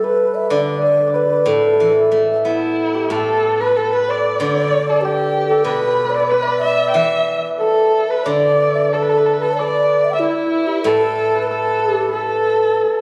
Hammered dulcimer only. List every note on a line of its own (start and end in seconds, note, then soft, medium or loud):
0.00 2.40 G4 medium
0.00 1.45 A4 medium
0.00 1.13 B4 medium
0.00 0.50 D5 medium
0.51 1.07 D5 medium
1.08 3.54 D5 medium
1.14 3.61 B4 medium
1.46 1.53 A4 medium
1.53 1.59 A4 soft
1.60 1.66 A4 soft
1.67 1.73 A4 soft
1.73 1.82 A4 soft
1.82 1.89 A4 soft
1.89 1.98 A4 soft
1.98 2.03 A4 soft
2.04 2.12 A4 soft
2.13 2.20 A4 soft
2.20 2.28 A4 soft
2.28 2.36 A4 soft
2.36 2.42 A4 soft
2.42 2.50 A4 soft
2.51 2.58 A4 soft
2.58 3.10 A4 soft
2.95 5.04 G4 medium
3.11 3.78 A4 medium
3.62 5.65 B4 medium
3.78 5.51 A4 medium
4.42 4.49 D5 medium
4.49 4.57 D5 medium
4.57 4.64 D5 medium
4.64 4.70 D5 soft
4.71 4.79 D5 medium
4.79 4.86 D5 medium
4.86 4.92 D5 medium
4.93 6.47 D5 medium
5.05 8.19 G4 medium
5.51 7.61 A4 medium
5.65 5.74 B4 medium
5.74 5.80 B4 medium
5.81 5.87 B4 medium
5.88 5.95 B4 medium
5.95 6.04 B4 medium
6.04 6.10 B4 medium
6.10 6.17 B4 medium
6.18 6.31 B4 medium
6.31 9.04 B4 medium
6.47 8.25 D5 medium
6.64 6.95 E5 medium
6.95 9.25 E5 medium
7.61 8.94 A4 medium
8.26 9.59 D5 medium
8.94 10.86 A4 medium
9.43 11.35 B4 medium
9.59 12.05 D5 medium
10.13 12.43 E5 medium
10.23 13.01 E4 medium
10.86 11.50 A4 medium
11.35 12.08 B4 medium
11.51 12.13 A4 medium
12.08 13.01 B4 soft
12.14 13.01 A4 medium